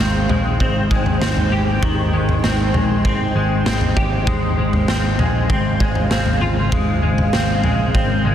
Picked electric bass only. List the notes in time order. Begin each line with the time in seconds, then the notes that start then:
0.00 G#1
0.29 A#1
0.60 G#1
0.91 G#1
1.21 G#1
1.51 G#1
1.82 G#1
2.13 G#1
2.44 G#1
2.74 A#1
3.05 G#1
3.35 G#1
3.66 G#1
3.97 G#1
4.27 G#1
4.58 G#1
4.88 G#1
5.19 A#1
5.50 G#1
5.80 G#1
6.11 G#1
6.42 G#1
6.72 G#1
7.03 G#1
7.33 G#1
7.64 A#1
7.95 G#1
8.25 G#1